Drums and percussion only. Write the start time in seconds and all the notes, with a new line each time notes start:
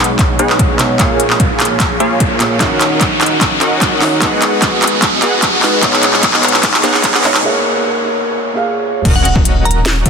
0.04 closed hi-hat
0.19 kick, clap, closed hi-hat
0.39 closed hi-hat
0.50 clap
0.59 kick, closed hi-hat
0.79 clap, closed hi-hat
1.00 kick, clap, closed hi-hat
1.20 closed hi-hat
1.30 clap
1.40 kick, closed hi-hat
1.60 clap, closed hi-hat
1.65 closed hi-hat
1.80 kick, clap, closed hi-hat
2.00 closed hi-hat
2.20 kick, closed hi-hat
2.40 clap, closed hi-hat
2.61 kick, clap, closed hi-hat
2.81 clap, closed hi-hat
3.01 kick, clap, closed hi-hat
3.21 clap, closed hi-hat
3.26 closed hi-hat
3.41 kick, clap, closed hi-hat
3.61 clap, closed hi-hat
3.81 kick, clap, closed hi-hat
4.02 clap, open hi-hat
4.22 kick, clap, closed hi-hat
4.42 clap, closed hi-hat
4.62 kick, clap, closed hi-hat
4.82 clap, closed hi-hat
4.87 closed hi-hat
5.02 kick, clap, closed hi-hat
5.22 clap, closed hi-hat
5.42 kick, clap, closed hi-hat
5.62 clap, open hi-hat
5.83 kick, clap, closed hi-hat
5.93 clap
6.03 clap, closed hi-hat
6.13 clap
6.23 kick, clap, closed hi-hat
6.34 clap
6.43 clap, closed hi-hat
6.48 closed hi-hat
6.54 clap
6.63 kick, clap, closed hi-hat
6.74 clap
6.84 clap, closed hi-hat
6.94 clap
7.04 kick, clap, closed hi-hat
7.14 clap
7.24 clap, open hi-hat
7.34 clap
9.05 kick, closed hi-hat, crash
9.25 closed hi-hat
9.36 kick
9.45 closed hi-hat
9.66 closed hi-hat
9.71 closed hi-hat
9.86 snare, closed hi-hat
10.06 kick, closed hi-hat